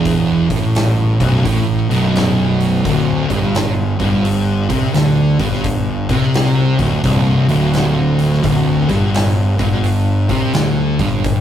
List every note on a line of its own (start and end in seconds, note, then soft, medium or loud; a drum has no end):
0.00 0.46 E1 medium
0.00 0.49 E2 medium
0.05 kick loud
0.05 open hi-hat medium
0.49 1.16 A1 medium
0.49 1.18 A2 loud
0.49 kick loud
0.49 open hi-hat medium
0.75 snare loud
0.75 open hi-hat medium
1.20 1.43 B0 medium
1.20 1.44 B1 loud
1.20 kick loud
1.20 open hi-hat medium
1.45 1.87 A1 medium
1.45 1.89 A2 loud
1.45 kick loud
1.45 open hi-hat medium
1.89 2.81 B0 medium
1.89 2.84 B1 loud
1.89 open hi-hat medium
2.15 snare loud
2.15 open hi-hat medium
2.60 open hi-hat medium
2.85 3.27 D1 medium
2.85 3.29 D2 loud
2.85 kick loud
2.85 open hi-hat medium
3.30 3.96 G1 medium
3.30 3.98 G2 loud
3.30 kick loud
3.30 open hi-hat medium
3.55 snare loud
3.55 open hi-hat medium
3.99 4.66 G1 medium
3.99 4.68 G2 loud
3.99 kick loud
3.99 open hi-hat soft
4.25 open hi-hat medium
4.68 4.93 C2 medium
4.68 4.92 C3 loud
4.68 kick loud
4.68 open hi-hat medium
4.93 5.36 D2 medium
4.93 5.37 D3 loud
4.93 snare medium
4.93 open hi-hat medium
5.38 6.06 G1 loud
5.38 6.08 G2 medium
5.38 kick loud
5.38 open hi-hat medium
5.53 snare soft
5.64 kick loud
5.64 open hi-hat medium
6.08 6.75 C2 medium
6.08 6.78 C3 loud
6.08 kick loud
6.08 open hi-hat medium
6.23 snare soft
6.34 snare loud
6.34 open hi-hat medium
6.78 7.03 D1 medium
6.78 7.03 D2 loud
6.78 kick loud
6.78 open hi-hat medium
7.03 7.46 C1 medium
7.03 7.48 C2 loud
7.03 kick loud
7.03 open hi-hat medium
7.48 8.40 D1 medium
7.48 8.42 D2 loud
7.48 open hi-hat medium
7.73 snare medium
7.73 open hi-hat medium
8.19 open hi-hat medium
8.33 snare soft
8.43 8.86 D1 medium
8.43 8.88 D2 loud
8.43 kick loud
8.43 open hi-hat medium
8.89 9.55 G1 medium
8.89 9.58 G2 loud
8.89 kick loud
8.89 open hi-hat medium
9.14 snare loud
9.14 open hi-hat medium
9.59 10.25 G1 medium
9.59 10.28 G2 loud
9.59 kick loud
9.59 open hi-hat medium
9.84 open hi-hat medium
10.29 10.53 C2 medium
10.29 10.54 C3 loud
10.29 kick loud
10.29 open hi-hat medium
10.53 10.96 D2 medium
10.53 10.98 D3 loud
10.53 snare loud
10.53 open hi-hat medium
10.99 11.41 G1 medium
10.99 11.41 G2 loud
10.99 kick loud
10.99 open hi-hat medium
11.24 kick loud
11.24 open hi-hat medium